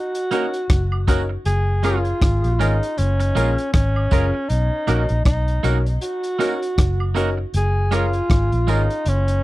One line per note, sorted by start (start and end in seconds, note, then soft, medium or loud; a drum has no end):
0.00 1.05 F#4 medium
0.15 closed hi-hat medium
0.31 0.45 A#3 medium
0.31 0.47 C#4 medium
0.31 0.45 D#4 medium
0.31 0.48 D#4 medium
0.31 0.45 F#4 medium
0.31 0.48 F#4 medium
0.31 0.46 A#4 medium
0.31 0.48 A#4 medium
0.31 closed hi-hat medium
0.31 tambourine medium
0.54 closed hi-hat soft
0.70 1.36 F#1 medium
0.70 kick loud
0.70 cross-stick loud
0.70 closed hi-hat medium
0.92 high woodblock medium
1.08 1.21 A#3 medium
1.08 1.23 C#4 medium
1.08 1.21 D#4 medium
1.08 1.23 D#4 medium
1.08 1.23 F#4 medium
1.08 1.22 F#4 medium
1.08 1.24 A#4 medium
1.08 1.22 A#4 medium
1.08 kick medium
1.08 closed hi-hat medium
1.08 tambourine medium
1.29 muted clean electric guitar stroke soft
1.45 2.12 F#1 loud
1.45 1.81 G#4 loud
1.45 closed hi-hat medium
1.83 1.97 G#3 medium
1.83 1.97 C#4 medium
1.83 1.99 C#4 medium
1.83 1.99 F4 medium
1.83 1.97 F4 medium
1.83 2.61 F4 loud
1.83 1.99 G#4 medium
1.83 1.98 A#4 medium
1.83 1.99 A#4 medium
1.83 closed hi-hat medium
1.83 tambourine soft
1.83 high woodblock medium
2.05 closed hi-hat soft
2.21 2.41 G#1 medium
2.21 kick loud
2.21 cross-stick medium
2.21 closed hi-hat medium
2.44 2.58 A#1 medium
2.44 closed hi-hat soft
2.59 2.79 G#1 medium
2.59 2.73 G#3 medium
2.59 2.73 C#4 medium
2.59 2.75 C#4 medium
2.59 2.99 D#4 medium
2.59 2.74 F4 medium
2.59 2.75 F4 medium
2.59 2.75 G#4 medium
2.59 2.76 A#4 medium
2.59 2.74 A#4 medium
2.59 closed hi-hat medium
2.59 tambourine medium
2.83 closed hi-hat medium
2.98 3.31 F#1 loud
2.98 3.72 C#4 medium
2.98 closed hi-hat medium
3.20 muted clean electric guitar stroke soft
3.20 closed hi-hat medium
3.35 3.55 A#1 medium
3.35 3.49 G#3 medium
3.35 3.49 C#4 medium
3.35 3.51 C#4 medium
3.35 3.51 F4 medium
3.35 3.50 F4 medium
3.35 3.51 G#4 medium
3.35 3.51 A#4 medium
3.35 3.50 A#4 medium
3.35 closed hi-hat medium
3.35 tambourine medium
3.58 closed hi-hat medium
3.73 4.07 G#1 medium
3.73 4.50 C#4 medium
3.73 kick loud
3.73 cross-stick loud
3.73 closed hi-hat medium
3.96 high woodblock medium
4.11 4.31 F#1 medium
4.11 4.25 G#3 medium
4.11 4.27 C#4 medium
4.11 4.25 C#4 medium
4.11 4.27 F4 medium
4.11 4.26 F4 medium
4.11 4.27 G#4 medium
4.11 4.27 A#4 loud
4.11 4.26 A#4 loud
4.11 kick medium
4.11 closed hi-hat medium
4.11 tambourine medium
4.34 muted clean electric guitar stroke soft
4.49 4.69 B1 medium
4.49 5.25 D#4 medium
4.49 closed hi-hat medium
4.87 5.07 A#1 medium
4.87 5.01 A#3 medium
4.87 5.03 C#4 medium
4.87 5.01 D#4 medium
4.87 5.03 D#4 medium
4.87 5.03 F#4 medium
4.87 5.01 F#4 medium
4.87 5.03 A#4 medium
4.87 5.02 A#4 medium
4.87 closed hi-hat medium
4.87 tambourine soft
4.87 high woodblock medium
5.09 5.24 A#1 medium
5.09 closed hi-hat soft
5.25 5.59 B1 medium
5.25 5.73 D#4 medium
5.25 kick loud
5.25 cross-stick loud
5.25 closed hi-hat medium
5.48 closed hi-hat soft
5.63 5.97 B1 medium
5.63 5.77 A#3 medium
5.63 5.79 C#4 medium
5.63 5.77 D#4 medium
5.63 5.79 D#4 medium
5.63 5.79 F#4 medium
5.63 5.77 F#4 medium
5.63 5.79 A#4 medium
5.63 5.78 A#4 medium
5.63 closed hi-hat medium
5.63 tambourine medium
5.86 closed hi-hat medium
6.01 7.12 F#4 medium
6.01 closed hi-hat medium
6.23 closed hi-hat medium
6.39 6.53 A#3 medium
6.39 6.55 C#4 medium
6.39 6.53 D#4 medium
6.39 6.55 D#4 medium
6.39 6.53 F#4 medium
6.39 6.55 F#4 medium
6.39 6.53 A#4 medium
6.39 6.55 A#4 medium
6.39 closed hi-hat medium
6.39 tambourine medium
6.62 closed hi-hat soft
6.78 7.44 F#1 medium
6.78 kick loud
6.78 cross-stick loud
6.78 closed hi-hat loud
7.00 high woodblock medium
7.15 7.29 A#3 medium
7.15 7.31 C#4 medium
7.15 7.29 D#4 medium
7.15 7.31 D#4 medium
7.15 7.29 F#4 medium
7.15 7.31 F#4 medium
7.15 7.29 A#4 medium
7.15 7.31 A#4 medium
7.15 closed hi-hat medium
7.15 tambourine medium
7.37 muted clean electric guitar stroke soft
7.54 8.20 F#1 loud
7.54 7.96 G#4 loud
7.54 closed hi-hat medium
7.91 8.05 G#3 medium
7.91 8.05 C#4 medium
7.91 8.07 C#4 medium
7.91 8.05 F4 medium
7.91 8.07 F4 medium
7.91 8.71 F4 medium
7.91 8.07 G#4 medium
7.91 8.06 A#4 medium
7.91 8.08 A#4 medium
7.91 closed hi-hat medium
7.91 tambourine soft
7.91 high woodblock medium
8.13 closed hi-hat soft
8.30 8.49 G#1 medium
8.30 kick loud
8.30 cross-stick medium
8.30 closed hi-hat medium
8.52 8.66 A#1 medium
8.52 closed hi-hat soft
8.67 8.87 G#1 medium
8.67 8.81 G#3 medium
8.67 8.81 C#4 medium
8.67 8.83 C#4 medium
8.67 9.10 D#4 medium
8.67 8.81 F4 medium
8.67 8.83 F4 medium
8.67 8.83 G#4 medium
8.67 8.82 A#4 medium
8.67 8.84 A#4 medium
8.67 closed hi-hat medium
8.67 tambourine medium
8.90 closed hi-hat soft
9.06 9.39 F#1 loud
9.06 9.43 C#4 medium
9.06 closed hi-hat medium
9.28 closed hi-hat medium